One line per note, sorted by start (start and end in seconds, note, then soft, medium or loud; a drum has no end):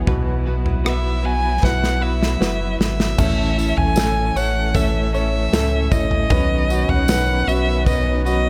0.00 3.15 B3 medium
0.07 1.59 B1 medium
0.07 0.46 B2 medium
0.07 3.15 B2 medium
0.07 0.46 E3 medium
0.07 3.16 F#3 medium
0.07 0.46 F#3 medium
0.07 0.46 B3 medium
0.07 3.16 E4 medium
0.07 0.45 F#4 loud
0.07 0.44 B4 medium
0.07 kick medium
0.07 floor tom medium
0.46 0.83 F#3 soft
0.46 0.83 B3 soft
0.46 0.84 F#4 medium
0.46 0.85 B4 medium
0.66 floor tom medium
0.84 1.24 F#3 soft
0.84 1.23 B3 soft
0.84 1.23 F#4 medium
0.84 1.22 B4 medium
0.84 1.26 E5 medium
0.84 cross-stick loud
1.23 2.02 F#3 soft
1.23 2.02 B3 soft
1.23 2.01 F#4 soft
1.23 2.00 B4 soft
1.23 1.65 G#5 loud
1.63 2.37 B1 medium
1.63 2.38 E4 soft
1.63 2.39 F#4 soft
1.63 2.39 B4 soft
1.63 2.04 F#5 medium
1.63 kick medium
1.63 snare soft
1.84 snare soft
2.01 2.39 F#3 soft
2.01 2.40 B3 soft
2.01 2.40 F#4 soft
2.01 2.40 B4 soft
2.01 2.79 E5 medium
2.23 snare medium
2.40 2.77 F#1 medium
2.40 3.18 F#3 medium
2.40 3.19 B3 medium
2.40 3.16 E4 soft
2.40 3.16 F#4 soft
2.40 3.19 F#4 medium
2.40 3.17 B4 medium
2.40 3.19 B4 medium
2.40 snare medium
2.79 3.16 G#1 medium
2.79 3.78 E5 medium
2.79 snare medium
3.00 snare medium
3.18 3.73 A1 loud
3.18 3.58 A2 medium
3.18 3.58 E3 medium
3.18 6.28 E3 medium
3.18 6.27 A3 medium
3.18 3.58 A3 medium
3.18 8.49 C#4 medium
3.18 3.57 C#4 medium
3.18 3.57 E4 medium
3.18 3.56 A4 medium
3.18 kick loud
3.18 floor tom loud
3.18 crash medium
3.18 tambourine soft
3.57 3.96 A3 soft
3.57 3.96 C#4 soft
3.57 5.10 E4 soft
3.57 3.97 E4 soft
3.57 3.97 A4 soft
3.57 tambourine soft
3.77 4.32 A1 loud
3.77 4.38 G#5 loud
3.77 floor tom medium
3.96 4.36 A2 medium
3.96 4.36 E3 medium
3.96 4.36 A3 medium
3.96 4.36 C#4 medium
3.96 4.35 E4 medium
3.96 4.73 A4 medium
3.96 4.34 A4 medium
3.96 snare loud
3.96 tambourine medium
4.36 5.49 A1 loud
4.36 4.73 A3 soft
4.36 4.74 C#4 soft
4.36 4.75 E4 soft
4.36 4.75 A4 medium
4.36 5.13 C#5 medium
4.36 4.76 F#5 loud
4.36 tambourine soft
4.74 5.14 A3 medium
4.74 5.14 C#4 medium
4.74 5.13 E4 medium
4.74 5.51 A4 medium
4.74 5.12 A4 medium
4.74 5.13 E5 medium
4.74 kick medium
4.74 floor tom soft
4.74 tambourine soft
5.13 5.52 A3 soft
5.13 5.52 C#4 soft
5.13 5.52 E4 soft
5.13 5.52 A4 soft
5.13 6.28 C#5 medium
5.13 5.93 E5 loud
5.13 tambourine soft
5.52 5.89 C#2 medium
5.52 6.30 A2 medium
5.52 6.30 E3 medium
5.52 6.31 A3 medium
5.52 6.31 C#4 medium
5.52 6.31 E4 medium
5.52 6.28 A4 medium
5.52 6.31 A4 medium
5.52 snare loud
5.52 tambourine medium
5.92 6.28 A1 medium
5.92 6.30 E4 soft
5.92 6.90 D#5 medium
5.92 kick medium
5.92 floor tom medium
5.92 tambourine soft
6.11 floor tom medium
6.30 6.85 B1 loud
6.30 6.69 B2 medium
6.30 6.70 D#3 medium
6.30 8.49 D#3 medium
6.30 6.70 F#3 medium
6.30 7.08 B3 medium
6.30 8.49 B3 medium
6.30 6.70 C#4 medium
6.30 6.69 D#4 medium
6.30 6.68 B4 medium
6.30 kick medium
6.30 floor tom loud
6.30 tambourine soft
6.69 7.08 F#3 soft
6.69 7.08 C#4 soft
6.69 7.08 D#4 soft
6.69 7.46 F#4 soft
6.69 7.09 B4 soft
6.69 tambourine soft
6.89 7.43 B1 medium
6.89 7.49 F#5 medium
6.89 floor tom medium
7.08 7.47 B2 medium
7.08 7.48 D#3 medium
7.08 7.48 F#3 medium
7.08 7.85 B3 medium
7.08 7.48 C#4 medium
7.08 7.48 D#4 medium
7.08 7.46 B4 medium
7.08 snare loud
7.08 tambourine medium
7.47 8.49 B1 loud
7.47 7.85 F#3 soft
7.47 7.86 C#4 soft
7.47 8.24 F#4 medium
7.47 7.87 B4 medium
7.47 7.86 E5 loud
7.47 tambourine soft
7.86 8.25 F#3 medium
7.86 8.49 B3 medium
7.86 8.25 C#4 medium
7.86 8.25 D#4 medium
7.86 8.24 B4 medium
7.86 8.23 D#5 medium
7.86 kick medium
7.86 floor tom soft
7.86 tambourine soft
8.25 8.49 F#3 soft
8.25 8.49 C#4 soft
8.25 8.49 D#4 soft
8.25 8.49 F#4 medium
8.25 8.49 B4 medium
8.25 8.49 D#5 medium
8.25 tambourine soft